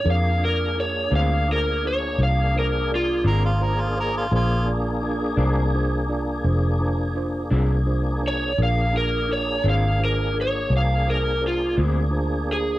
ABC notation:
X:1
M:12/8
L:1/16
Q:3/8=56
K:Bbmix
V:1 name="Electric slide guitar"
f2 B2 _d2 f2 B2 d2 f2 B2 F2 z6 | z16 z6 _d2 | f2 B2 _d2 f2 B2 d2 f2 B2 F2 z4 A2 |]
V:2 name="Tine electric piano"
[DFAB]2 [DFAd]2 [DFAB]2 [DFAc]2 [DFAc]2 [DFAc]2 [DFAB]2 [DFAc]2 [DFAd]2 [DFAc]2 [DFAc]2 [DFAc]2 | [DFAc]2 [DFAd]2 [DFAd]2 [DFAc]2 [DFAc]2 [DFAd]2 [DFAc]2 [DFAc]2 [DFAc]2 [DFAc]2 [DFAc]2 [DFAc]2 | [DFAB]2 [DFAB]2 [DFAB]2 [DFAc]2 [DFAc]2 [DFAB]2 [DFAc]2 [DFAc]2 [DFAc]2 [DFAc]2 [DFAc]2 [DFAc]2 |]
V:3 name="Harmonica"
z16 z2 B F B F B F | F2 z16 z6 | z24 |]
V:4 name="Tonewheel organ"
[B,DA]24 | [B,DA]24 | [B,DA]24 |]
V:5 name="Clean electric guitar"
z6 [B,,A,CD]2 z8 z2 [B,,A,CD]2 z4 | z6 [B,,A,CD]2 z8 z2 [B,,A,CD]2 z4 | z6 [B,,A,CD]2 z8 z2 [B,,A,CD]2 z4 |]
V:6 name="Fingered electric bass" clef=bass
F,,6 D,,6 C,,6 A,,,6 | B,,,6 C,,6 F,,,6 C,,6 | B,,,6 A,,,6 C,,6 D,,6 |]